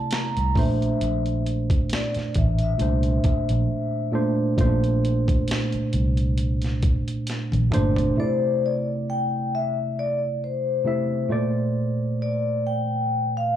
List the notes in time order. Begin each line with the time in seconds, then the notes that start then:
Already playing: C3 A3 E4 D5
0.11 A#5, snare, closed hi-hat
0.37 C2, closed hi-hat
0.55 A#1 A#2 A3 D4 C5 E5, kick, open hi-hat
0.82 closed hi-hat
1.01 A#1, closed hi-hat
1.26 closed hi-hat
1.46 closed hi-hat
1.70 kick, closed hi-hat
1.90 D5, snare, closed hi-hat
2.14 muted fingered electric bass stroke, snare, closed hi-hat
2.34 A1 E5, kick, closed hi-hat
2.59 closed hi-hat
2.63 E5
2.78 C2 A#2 A3 D4 C5, closed hi-hat
3.03 closed hi-hat
3.24 muted fingered electric bass stroke, kick, closed hi-hat
3.49 A#1, closed hi-hat
4.12 A#2 A3 D4 C5
4.57 A#1 A#2 A3 C#4 C5, kick, closed hi-hat
4.66 D4
4.84 closed hi-hat
5.05 closed hi-hat
5.28 kick, closed hi-hat
5.48 snare, closed hi-hat
5.72 muted fingered electric bass stroke, closed hi-hat
5.93 C2, closed hi-hat
6.17 closed hi-hat
6.38 closed hi-hat
6.62 snare, closed hi-hat
6.83 kick, closed hi-hat
7.08 closed hi-hat
7.27 snare, closed hi-hat
7.52 A#1, closed hi-hat, high tom
7.71 G1 A#2 A3 D4 C5, closed hi-hat, mid tom
7.96 closed hi-hat, floor tom
8.16 C3 A3 E4 C5 D5
8.66 D5
9.10 G5
9.55 E5
9.99 D5
10.44 C5
10.84 C3 A3 E4 E5
11.29 A#2 A3 C5 D5
12.22 D5
12.67 G5
13.37 F5